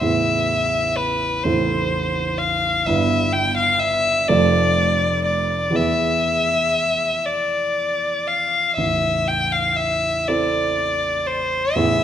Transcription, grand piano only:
0.01 1.40 A0 soft
0.01 1.41 A1 soft
0.01 1.41 B3 soft
0.01 1.41 E4 soft
0.01 1.41 G#4 soft
1.45 2.83 A0 soft
1.45 2.82 A1 soft
1.45 2.82 C4 soft
1.45 2.83 E4 soft
1.45 2.83 A4 soft
2.86 4.25 G1 soft
2.86 4.25 G2 soft
2.86 4.25 B3 soft
2.86 4.25 E4 soft
2.86 4.26 B4 soft
4.29 5.72 F1 soft
4.29 5.72 F2 soft
4.29 5.72 A3 soft
4.29 5.72 A4 soft
4.29 5.73 D5 soft
5.70 8.71 E2 soft
5.70 8.71 B3 soft
5.70 8.72 G#4 soft
5.75 8.73 B4 soft
8.77 11.72 A0 soft
8.77 11.72 A1 soft
10.28 11.72 C4 soft
10.28 11.72 E4 soft
10.28 11.72 A4 soft
11.76 12.04 A0 soft
11.76 12.04 A1 soft
11.76 12.04 B3 soft
11.76 12.04 E4 soft
11.76 12.04 G#4 soft

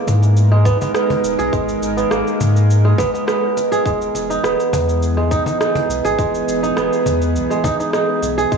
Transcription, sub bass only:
0.07 0.76 G#2 medium
1.24 1.36 D#1 loud
1.39 1.50 B1 medium
1.53 1.76 G#1 loud
1.82 2.05 G#1 medium
2.11 2.23 G#1 medium
2.40 2.94 G#2 medium
2.98 3.11 G#1 medium
3.85 4.09 E1 loud
4.15 4.38 E1 medium
4.44 4.56 E1 medium
4.72 5.41 E2 medium
5.89 6.02 B1 loud
6.05 6.16 G#1 medium
6.19 6.42 E1 loud
6.48 6.71 E1 medium
6.77 6.89 E1 medium
7.06 7.37 E2 medium
7.35 7.47 B1 medium
8.22 8.46 B1 medium
8.52 8.57 G#1 loud

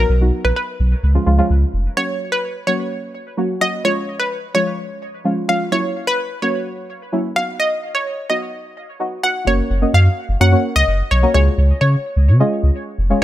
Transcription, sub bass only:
0.09 0.31 B1 loud
0.45 0.52 A#1 medium
0.80 0.94 B1 medium
1.03 1.18 C#2 loud
1.27 1.41 C#2 medium
1.50 1.65 C#2 medium
1.74 1.88 F1 medium
9.47 9.61 F#1 loud
9.70 9.85 F#1 loud
9.94 10.08 F#2 loud
10.29 10.36 F#1 medium
10.41 10.55 F#2 loud
10.76 10.83 C#2 medium
10.88 11.02 F#1 loud
11.11 11.26 B1 loud
11.35 11.49 C#2 loud
11.58 11.72 C#2 loud
11.81 11.96 C#3 loud
12.16 12.30 C#2 loud
12.28 12.43 C#3 loud
12.63 12.71 C#2 loud
12.98 13.13 F1 medium

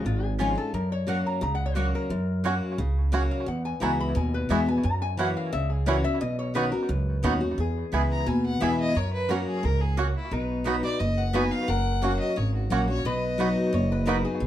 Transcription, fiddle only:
8.11 8.29 A#5 loud
8.27 8.45 G#5 medium
8.46 8.63 F#5 medium
8.62 8.79 E5 medium
8.80 8.98 D#5 loud
8.97 9.13 C#5 medium
9.13 9.31 B4 loud
9.30 9.47 A#4 medium
9.47 9.66 G#4 loud
9.65 9.83 A#4 loud
9.81 9.99 G#4 medium
9.97 10.15 F#4 medium
10.16 10.34 E4 medium
10.33 10.67 D#4 medium
10.84 11.01 D5 loud
11.00 11.20 D#5 loud
11.18 11.36 F#5 medium
11.35 11.53 G#5 loud
11.52 11.69 F5 loud
11.68 12.19 F#5 loud
12.20 12.38 D#5 loud
12.37 12.54 C#5 medium
12.54 12.73 F#4 medium
12.71 12.88 A#4 medium
12.89 13.07 C#5 loud
13.06 14.08 D#5 medium

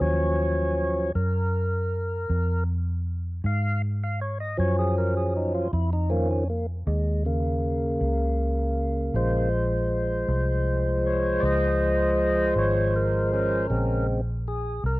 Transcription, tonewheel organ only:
0.00 1.11 F3 soft
0.00 1.11 F#3 soft
0.00 1.11 C#4 medium
0.00 1.12 C#5 medium
1.15 2.64 A#4 medium
3.46 3.82 F5 medium
4.03 4.20 F5 medium
4.21 4.38 C#5 medium
4.40 4.57 D#5 medium
4.57 5.68 F3 soft
4.57 5.68 F#3 soft
4.57 5.68 C#4 medium
4.57 4.77 C#5 medium
4.79 4.96 G#4 medium
4.98 5.15 A#4 medium
5.17 5.34 G#4 medium
5.37 5.53 D#4 medium
5.54 5.71 F4 medium
5.73 5.90 E4 medium
5.93 6.10 D#4 medium
6.10 6.44 D#3 soft
6.10 6.44 F3 soft
6.10 6.28 A#3 medium
6.10 6.30 C#4 soft
6.31 6.48 C#4 medium
6.50 6.67 A#3 medium
6.87 7.24 G#3 medium
7.25 9.49 C#3 medium
7.25 9.49 A#3 medium
9.15 13.67 F3 soft
9.15 13.67 G#3 soft
9.15 13.67 C5 medium
11.06 11.42 C#5 medium
11.40 11.44 D5 medium
11.45 12.54 D#5 loud
12.59 12.94 C#5 medium
12.96 13.32 A#4 medium
13.33 14.05 C#4 medium
13.33 14.07 A#4 medium
13.70 14.21 C#3 medium
13.70 14.21 G#3 soft
13.70 14.21 C4 medium
14.48 14.84 G#4 medium
14.86 15.00 A#4 medium

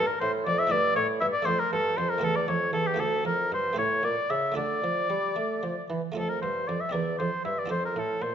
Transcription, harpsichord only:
0.00 0.19 G2 medium
0.00 0.18 A#3 medium
0.00 0.67 E4 medium
0.00 0.69 G4 medium
0.22 0.44 A2 medium
0.47 0.69 F2 medium
0.67 1.41 A3 medium
0.67 1.43 E4 medium
0.67 1.44 A4 medium
0.71 0.94 G2 medium
0.96 1.19 A2 medium
1.22 1.45 G2 medium
1.42 1.69 A3 medium
1.42 2.19 D4 medium
1.42 2.20 A4 medium
1.47 1.70 F2 medium
1.73 1.96 G2 medium
1.98 2.21 F2 medium
2.18 2.45 A3 medium
2.18 2.96 G4 medium
2.18 2.96 A4 medium
2.22 2.46 E2 medium
2.48 2.71 F2 medium
2.73 2.97 E2 medium
2.94 3.47 A3 medium
2.94 3.74 F4 medium
2.94 3.74 A4 medium
2.99 3.23 D2 medium
3.25 3.49 F2 medium
3.52 3.75 G2 medium
3.73 4.51 A3 medium
3.73 4.53 G4 medium
3.73 4.54 A4 medium
3.77 4.01 A2 medium
4.03 4.27 A#2 medium
4.30 4.54 C#3 medium
4.52 5.06 A3 soft
4.52 6.11 F4 soft
4.52 6.12 A4 soft
4.57 4.81 D3 medium
4.84 5.08 F3 medium
5.10 5.34 G3 medium
5.36 5.60 A3 medium
5.63 5.87 F3 medium
5.90 6.14 E3 medium
6.12 6.39 A3 soft
6.12 6.90 F4 soft
6.12 6.91 A4 soft
6.17 6.40 F2 soft
6.43 6.66 G2 soft
6.69 6.92 F2 soft
6.89 7.65 C4 soft
6.89 7.67 G4 soft
6.89 7.68 A#4 soft
6.94 7.17 E2 soft
7.20 7.43 F2 soft
7.45 7.68 G2 soft
7.66 8.18 C4 soft
7.66 8.35 F4 soft
7.66 8.35 A4 soft
7.70 7.94 F2 soft
7.96 8.19 A2 soft
8.22 8.35 A#2 soft

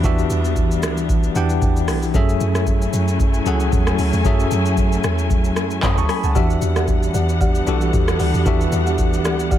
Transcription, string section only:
0.00 2.10 E3 medium
0.00 2.10 G3 medium
0.00 2.10 B3 medium
0.00 2.10 D4 medium
0.00 6.31 E4 medium
2.14 6.31 F#3 medium
2.14 6.31 A3 loud
2.14 6.31 C#4 medium
2.14 6.31 G#5 medium
6.35 9.59 E3 medium
6.35 9.59 G3 medium
6.35 9.59 B3 medium
6.35 9.59 D4 medium
6.35 9.59 F#5 medium

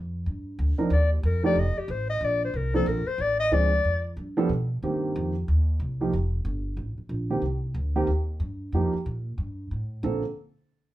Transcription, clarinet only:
0.93 1.11 D5 medium
1.12 1.27 G4 medium
1.26 1.45 A#4 medium
1.46 1.61 D5 loud
1.59 1.80 D#5 medium
1.79 1.92 G4 medium
1.91 2.09 C5 medium
2.10 2.26 D#5 medium
2.24 2.43 D5 medium
2.44 2.58 C5 medium
2.56 2.75 A#4 medium
2.75 2.90 A4 medium
2.88 3.08 A#4 medium
3.07 3.23 C5 medium
3.21 3.39 D5 medium
3.40 3.55 D#5 loud
3.53 4.05 D5 medium

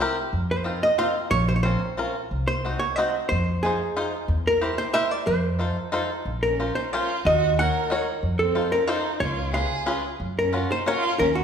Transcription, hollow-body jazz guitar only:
0.00 0.13 G4 medium
0.51 0.84 C5 medium
0.83 0.98 D#5 medium
0.99 1.30 F5 loud
1.31 1.46 C#5 loud
1.49 1.55 C5 medium
1.56 1.62 C#5 medium
1.63 2.12 C5 medium
2.48 2.79 C5 medium
2.79 2.96 C#5 medium
2.96 3.28 D#5 loud
3.29 3.64 C5 loud
3.63 4.09 G#4 medium
4.47 4.78 A#4 medium
4.78 4.95 C5 medium
4.94 5.11 E5 loud
5.11 5.28 D5 loud
5.27 5.89 C5 medium
6.43 6.75 A#4 medium
6.75 6.93 C5 medium
6.93 7.27 C#5 medium
7.26 7.59 D#5 loud
7.59 8.04 F#5 loud
8.39 8.73 A4 medium
8.72 8.87 A#4 medium
8.87 9.20 C5 medium
9.20 9.51 C#5 medium
9.54 10.00 F5 medium
10.39 10.71 A#4 medium
10.72 10.87 C5 medium
10.88 11.19 C#5 loud
11.19 11.37 A#4 loud
11.35 11.44 F#4 medium

